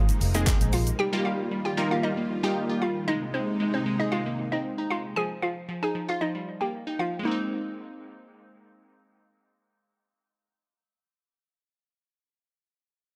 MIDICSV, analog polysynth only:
0, 0, Header, 1, 2, 480
1, 0, Start_track
1, 0, Key_signature, -4, "major"
1, 0, Tempo, 521739
1, 913, Time_signature, 4, 2, 24, 8
1, 12101, End_track
2, 0, Start_track
2, 0, Title_t, "Analog polysynth"
2, 0, Program_c, 0, 90
2, 317, Note_on_c, 0, 56, 83
2, 318, Note_on_c, 0, 58, 74
2, 320, Note_on_c, 0, 60, 75
2, 320, Note_on_c, 0, 63, 75
2, 321, Note_on_c, 0, 68, 88
2, 694, Note_off_c, 0, 56, 0
2, 695, Note_off_c, 0, 58, 0
2, 695, Note_off_c, 0, 60, 0
2, 696, Note_off_c, 0, 63, 0
2, 696, Note_off_c, 0, 68, 0
2, 1036, Note_on_c, 0, 55, 87
2, 1037, Note_on_c, 0, 58, 80
2, 1038, Note_on_c, 0, 63, 75
2, 1039, Note_on_c, 0, 65, 75
2, 1040, Note_on_c, 0, 67, 91
2, 1351, Note_off_c, 0, 55, 0
2, 1352, Note_off_c, 0, 58, 0
2, 1352, Note_off_c, 0, 63, 0
2, 1353, Note_off_c, 0, 65, 0
2, 1353, Note_off_c, 0, 67, 0
2, 1630, Note_on_c, 0, 55, 76
2, 1631, Note_on_c, 0, 58, 75
2, 1633, Note_on_c, 0, 63, 75
2, 1633, Note_on_c, 0, 65, 74
2, 1635, Note_on_c, 0, 70, 91
2, 1954, Note_off_c, 0, 55, 0
2, 1955, Note_off_c, 0, 58, 0
2, 1955, Note_off_c, 0, 63, 0
2, 1956, Note_off_c, 0, 65, 0
2, 1956, Note_off_c, 0, 70, 0
2, 2238, Note_on_c, 0, 55, 80
2, 2239, Note_on_c, 0, 58, 72
2, 2240, Note_on_c, 0, 63, 76
2, 2242, Note_on_c, 0, 65, 77
2, 2242, Note_on_c, 0, 67, 89
2, 2615, Note_off_c, 0, 55, 0
2, 2615, Note_off_c, 0, 58, 0
2, 2616, Note_off_c, 0, 63, 0
2, 2617, Note_off_c, 0, 65, 0
2, 2617, Note_off_c, 0, 67, 0
2, 12101, End_track
0, 0, End_of_file